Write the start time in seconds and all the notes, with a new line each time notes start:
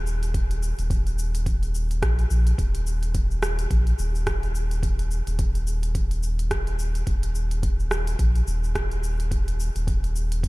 Already playing: D#1
0.07 shaker
0.23 closed hi-hat, shaker
0.34 kick, closed hi-hat, shaker
0.51 closed hi-hat, shaker
0.63 shaker
0.78 D#1, closed hi-hat, shaker
0.90 kick, closed hi-hat, shaker
1.07 closed hi-hat, shaker
1.19 shaker
1.35 closed hi-hat, shaker
1.46 kick, closed hi-hat, shaker
1.63 closed hi-hat, shaker
1.75 shaker
1.91 closed hi-hat, shaker
2.02 A#1, kick, cross-stick, closed hi-hat, shaker
2.19 closed hi-hat, shaker
2.30 A#1, shaker
2.47 closed hi-hat, shaker
2.58 D#1, kick, closed hi-hat, shaker
2.75 closed hi-hat, shaker
2.87 shaker
3.03 closed hi-hat, shaker
3.15 kick, closed hi-hat, shaker
3.31 shaker
3.43 cross-stick, shaker
3.59 closed hi-hat, shaker
3.71 A#1, kick, closed hi-hat, shaker
3.87 closed hi-hat, shaker
3.99 D#1, shaker
4.15 shaker
4.27 kick, cross-stick, closed hi-hat, shaker
4.43 closed hi-hat, shaker
4.55 shaker
4.71 closed hi-hat, shaker
4.83 kick, closed hi-hat, shaker
4.99 closed hi-hat, shaker
5.11 shaker
5.27 D#1, closed hi-hat, shaker
5.39 kick, closed hi-hat, shaker
5.55 closed hi-hat, shaker
5.67 shaker
5.83 closed hi-hat, shaker
5.95 kick, closed hi-hat, shaker
6.11 closed hi-hat, shaker
6.23 shaker
6.39 closed hi-hat, shaker
6.51 kick, cross-stick, closed hi-hat, shaker
6.67 closed hi-hat, shaker
6.79 shaker
6.95 closed hi-hat, shaker
7.07 D#1, kick, closed hi-hat, shaker
7.23 closed hi-hat, shaker
7.35 shaker
7.51 closed hi-hat, shaker
7.63 kick, closed hi-hat, shaker
7.80 shaker
7.91 cross-stick, shaker
8.07 closed hi-hat, shaker
8.19 A#1, kick, closed hi-hat, shaker
8.36 closed hi-hat, shaker
8.47 D#1, shaker
8.64 shaker
8.75 kick, cross-stick, closed hi-hat, shaker
8.91 closed hi-hat, shaker
9.04 shaker
9.20 closed hi-hat, shaker
9.31 kick, closed hi-hat, shaker
9.48 closed hi-hat, shaker
9.60 shaker
9.76 D#1, closed hi-hat, shaker
9.87 kick, closed hi-hat, shaker
10.04 closed hi-hat, shaker
10.16 shaker
10.32 closed hi-hat, shaker
10.43 kick, closed hi-hat, shaker